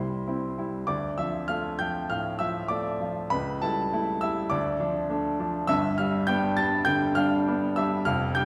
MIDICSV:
0, 0, Header, 1, 2, 480
1, 0, Start_track
1, 0, Tempo, 609756
1, 692, Time_signature, 4, 2, 24, 8
1, 3101, Tempo, 589971
1, 6771, End_track
2, 0, Start_track
2, 0, Title_t, "Grand piano"
2, 0, Program_c, 0, 0
2, 0, Control_c, 0, 64, 127
2, 0, Note_on_c, 0, 36, 72
2, 0, Note_on_c, 0, 55, 55
2, 0, Note_on_c, 0, 64, 52
2, 0, Note_on_c, 0, 72, 65
2, 0, Note_on_c, 0, 84, 94
2, 198, Note_off_c, 0, 64, 0
2, 199, Note_off_c, 0, 55, 0
2, 217, Note_on_c, 0, 64, 56
2, 220, Note_on_c, 0, 60, 58
2, 424, Note_off_c, 0, 72, 0
2, 431, Note_off_c, 0, 64, 0
2, 433, Note_off_c, 0, 60, 0
2, 451, Note_off_c, 0, 84, 0
2, 457, Note_on_c, 0, 55, 50
2, 461, Note_on_c, 0, 64, 57
2, 663, Note_off_c, 0, 36, 0
2, 669, Note_off_c, 0, 55, 0
2, 671, Note_off_c, 0, 64, 0
2, 684, Note_on_c, 0, 86, 99
2, 690, Note_on_c, 0, 74, 72
2, 692, Note_on_c, 0, 38, 72
2, 703, Control_c, 0, 64, 0
2, 822, Control_c, 0, 64, 127
2, 913, Note_off_c, 0, 74, 0
2, 926, Note_on_c, 0, 88, 93
2, 927, Note_off_c, 0, 86, 0
2, 934, Note_on_c, 0, 53, 54
2, 934, Note_on_c, 0, 76, 74
2, 938, Note_on_c, 0, 65, 58
2, 1150, Note_off_c, 0, 53, 0
2, 1152, Note_off_c, 0, 65, 0
2, 1157, Note_off_c, 0, 76, 0
2, 1164, Note_on_c, 0, 89, 105
2, 1170, Note_off_c, 0, 88, 0
2, 1172, Note_on_c, 0, 77, 75
2, 1174, Note_on_c, 0, 57, 63
2, 1175, Note_on_c, 0, 65, 64
2, 1393, Note_off_c, 0, 57, 0
2, 1393, Note_off_c, 0, 65, 0
2, 1399, Note_off_c, 0, 77, 0
2, 1406, Note_on_c, 0, 91, 102
2, 1411, Note_on_c, 0, 79, 75
2, 1412, Note_off_c, 0, 89, 0
2, 1418, Note_on_c, 0, 53, 53
2, 1420, Note_on_c, 0, 65, 50
2, 1632, Note_off_c, 0, 38, 0
2, 1637, Note_off_c, 0, 53, 0
2, 1639, Note_off_c, 0, 65, 0
2, 1641, Note_off_c, 0, 79, 0
2, 1650, Note_on_c, 0, 89, 99
2, 1655, Note_on_c, 0, 45, 64
2, 1656, Note_off_c, 0, 91, 0
2, 1657, Note_on_c, 0, 77, 80
2, 1879, Note_on_c, 0, 88, 100
2, 1883, Note_off_c, 0, 77, 0
2, 1886, Note_on_c, 0, 53, 60
2, 1889, Note_on_c, 0, 76, 81
2, 1894, Note_on_c, 0, 65, 63
2, 1896, Note_off_c, 0, 89, 0
2, 2042, Note_off_c, 0, 45, 0
2, 2107, Note_off_c, 0, 53, 0
2, 2111, Note_off_c, 0, 65, 0
2, 2113, Note_on_c, 0, 86, 99
2, 2116, Note_off_c, 0, 76, 0
2, 2121, Note_on_c, 0, 57, 58
2, 2125, Note_on_c, 0, 65, 55
2, 2126, Note_on_c, 0, 74, 68
2, 2128, Note_off_c, 0, 88, 0
2, 2345, Note_off_c, 0, 57, 0
2, 2347, Note_off_c, 0, 65, 0
2, 2366, Note_on_c, 0, 53, 50
2, 2373, Note_on_c, 0, 65, 65
2, 2584, Note_off_c, 0, 74, 0
2, 2591, Note_off_c, 0, 53, 0
2, 2595, Note_off_c, 0, 65, 0
2, 2600, Note_on_c, 0, 83, 106
2, 2607, Note_on_c, 0, 71, 70
2, 2609, Note_off_c, 0, 86, 0
2, 2611, Note_on_c, 0, 37, 77
2, 2636, Control_c, 0, 64, 0
2, 2774, Control_c, 0, 64, 127
2, 2839, Note_off_c, 0, 71, 0
2, 2846, Note_on_c, 0, 81, 92
2, 2853, Note_off_c, 0, 83, 0
2, 2853, Note_on_c, 0, 55, 57
2, 2857, Note_on_c, 0, 69, 59
2, 2859, Note_on_c, 0, 64, 65
2, 3071, Note_off_c, 0, 55, 0
2, 3074, Note_off_c, 0, 64, 0
2, 3095, Note_on_c, 0, 57, 71
2, 3097, Note_on_c, 0, 64, 74
2, 3303, Note_off_c, 0, 69, 0
2, 3312, Note_off_c, 0, 57, 0
2, 3314, Note_off_c, 0, 64, 0
2, 3321, Note_on_c, 0, 88, 115
2, 3330, Note_off_c, 0, 81, 0
2, 3335, Note_on_c, 0, 55, 58
2, 3336, Note_on_c, 0, 76, 74
2, 3337, Note_on_c, 0, 64, 65
2, 3541, Note_off_c, 0, 37, 0
2, 3550, Note_off_c, 0, 55, 0
2, 3552, Note_off_c, 0, 64, 0
2, 3554, Note_on_c, 0, 86, 107
2, 3558, Note_off_c, 0, 76, 0
2, 3561, Note_on_c, 0, 74, 76
2, 3562, Note_on_c, 0, 38, 84
2, 3567, Note_off_c, 0, 88, 0
2, 3591, Control_c, 0, 64, 0
2, 3724, Control_c, 0, 64, 127
2, 3799, Note_on_c, 0, 53, 59
2, 3800, Note_on_c, 0, 62, 73
2, 4022, Note_off_c, 0, 53, 0
2, 4023, Note_off_c, 0, 62, 0
2, 4042, Note_on_c, 0, 57, 61
2, 4048, Note_on_c, 0, 62, 73
2, 4254, Note_off_c, 0, 74, 0
2, 4263, Note_off_c, 0, 57, 0
2, 4267, Note_off_c, 0, 62, 0
2, 4283, Note_off_c, 0, 86, 0
2, 4285, Note_on_c, 0, 53, 61
2, 4289, Note_on_c, 0, 62, 66
2, 4495, Note_off_c, 0, 38, 0
2, 4503, Note_off_c, 0, 53, 0
2, 4505, Note_off_c, 0, 62, 0
2, 4513, Note_on_c, 0, 88, 127
2, 4518, Note_on_c, 0, 31, 82
2, 4523, Note_on_c, 0, 76, 99
2, 4525, Note_on_c, 0, 43, 83
2, 4545, Control_c, 0, 64, 0
2, 4687, Control_c, 0, 64, 127
2, 4748, Note_off_c, 0, 76, 0
2, 4759, Note_off_c, 0, 88, 0
2, 4759, Note_on_c, 0, 89, 104
2, 4769, Note_on_c, 0, 55, 62
2, 4771, Note_on_c, 0, 77, 71
2, 4773, Note_on_c, 0, 62, 64
2, 4984, Note_off_c, 0, 55, 0
2, 4986, Note_off_c, 0, 62, 0
2, 4992, Note_off_c, 0, 77, 0
2, 4996, Note_on_c, 0, 91, 122
2, 5003, Note_off_c, 0, 89, 0
2, 5003, Note_on_c, 0, 59, 77
2, 5007, Note_on_c, 0, 79, 95
2, 5009, Note_on_c, 0, 62, 81
2, 5220, Note_off_c, 0, 59, 0
2, 5223, Note_off_c, 0, 62, 0
2, 5229, Note_off_c, 0, 79, 0
2, 5239, Note_on_c, 0, 93, 118
2, 5240, Note_off_c, 0, 91, 0
2, 5251, Note_on_c, 0, 55, 65
2, 5252, Note_on_c, 0, 81, 78
2, 5253, Note_on_c, 0, 62, 75
2, 5449, Note_off_c, 0, 31, 0
2, 5453, Note_off_c, 0, 43, 0
2, 5463, Note_off_c, 0, 55, 0
2, 5465, Note_off_c, 0, 62, 0
2, 5467, Note_on_c, 0, 91, 127
2, 5471, Note_off_c, 0, 81, 0
2, 5475, Note_on_c, 0, 79, 98
2, 5477, Note_on_c, 0, 50, 80
2, 5481, Note_off_c, 0, 93, 0
2, 5704, Note_off_c, 0, 79, 0
2, 5714, Note_on_c, 0, 89, 118
2, 5717, Note_off_c, 0, 91, 0
2, 5723, Note_on_c, 0, 55, 67
2, 5725, Note_on_c, 0, 77, 90
2, 5728, Note_on_c, 0, 62, 76
2, 5868, Note_off_c, 0, 50, 0
2, 5943, Note_off_c, 0, 55, 0
2, 5947, Note_off_c, 0, 62, 0
2, 5978, Note_on_c, 0, 59, 67
2, 5981, Note_on_c, 0, 62, 74
2, 6180, Note_off_c, 0, 77, 0
2, 6193, Note_off_c, 0, 59, 0
2, 6195, Note_off_c, 0, 62, 0
2, 6207, Note_off_c, 0, 89, 0
2, 6210, Note_on_c, 0, 88, 108
2, 6219, Note_on_c, 0, 55, 64
2, 6221, Note_on_c, 0, 76, 84
2, 6224, Note_on_c, 0, 62, 68
2, 6434, Note_off_c, 0, 55, 0
2, 6437, Note_off_c, 0, 62, 0
2, 6442, Note_off_c, 0, 76, 0
2, 6447, Note_on_c, 0, 89, 119
2, 6449, Note_on_c, 0, 29, 80
2, 6453, Note_off_c, 0, 88, 0
2, 6454, Note_on_c, 0, 77, 84
2, 6455, Note_on_c, 0, 41, 85
2, 6467, Control_c, 0, 64, 0
2, 6598, Control_c, 0, 64, 127
2, 6680, Note_off_c, 0, 77, 0
2, 6687, Note_on_c, 0, 91, 117
2, 6694, Note_off_c, 0, 89, 0
2, 6698, Note_on_c, 0, 55, 65
2, 6700, Note_on_c, 0, 62, 68
2, 6700, Note_on_c, 0, 79, 94
2, 6771, Note_off_c, 0, 29, 0
2, 6771, Note_off_c, 0, 41, 0
2, 6771, Note_off_c, 0, 55, 0
2, 6771, Note_off_c, 0, 62, 0
2, 6771, Note_off_c, 0, 79, 0
2, 6771, Note_off_c, 0, 91, 0
2, 6771, End_track
0, 0, End_of_file